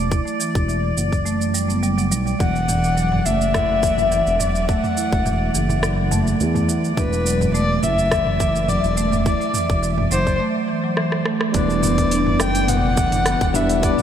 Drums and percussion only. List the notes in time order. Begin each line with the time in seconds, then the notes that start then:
0.12 kick, shaker
0.27 shaker
0.40 shaker
0.55 kick, shaker
0.69 shaker
0.98 shaker
1.13 kick, shaker
1.26 shaker
1.41 shaker
1.55 shaker
1.70 shaker
1.83 shaker
1.98 shaker
2.12 shaker
2.27 shaker
2.40 kick, shaker
2.56 shaker
2.68 mid tom, shaker
2.84 shaker
2.97 shaker
3.12 mid tom
3.26 shaker
3.41 shaker
3.54 kick, cross-stick, mid tom, shaker
3.83 kick, shaker
3.98 mid tom, shaker
4.12 shaker
4.27 shaker
4.40 mid tom, shaker
4.55 shaker
4.69 kick, shaker
4.84 mid tom, shaker
4.97 shaker
5.13 kick, shaker
5.26 mid tom, shaker
5.55 shaker
5.70 mid tom, shaker
5.83 cross-stick, shaker
6.11 mid tom, shaker
6.27 shaker
6.40 shaker
6.55 mid tom, shaker
6.69 shaker
6.84 shaker
6.97 kick, mid tom, shaker
7.13 shaker
7.26 shaker
7.41 mid tom, shaker
7.55 shaker
7.83 mid tom, shaker
7.99 shaker
8.11 kick, cross-stick, shaker
8.27 mid tom
8.40 kick, shaker
8.56 shaker
8.69 mid tom, shaker
8.84 shaker
8.97 shaker
9.12 mid tom, shaker
9.26 kick, shaker
9.41 shaker
9.54 mid tom, shaker
9.70 kick, shaker
9.83 shaker
9.98 mid tom
10.12 shaker
10.27 kick, shaker
10.97 cross-stick
11.12 cross-stick
11.26 cross-stick
11.41 cross-stick
11.54 kick, open hi-hat, shaker
11.70 shaker
11.83 mid tom, shaker
11.98 kick, open hi-hat, shaker
12.11 open hi-hat, shaker
12.27 mid tom
12.40 cross-stick, shaker
12.55 open hi-hat, shaker
12.68 mid tom, open hi-hat, shaker
12.97 kick, shaker
13.12 mid tom, open hi-hat, shaker
13.26 cross-stick, open hi-hat, shaker
13.41 kick, open hi-hat, shaker
13.54 mid tom, shaker
13.69 open hi-hat, shaker
13.83 kick, open hi-hat, shaker
13.98 mid tom, shaker